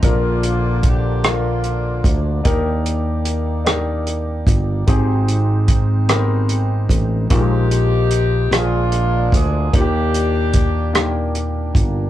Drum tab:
HH |xxxxxx|xxxxxx|xxxxxx|xxxxxx|
SD |---r--|---r--|---r--|---r--|
BD |o-o--o|o----o|o-o--o|o----o|

HH |xxxxxx|
SD |---r--|
BD |o-o--o|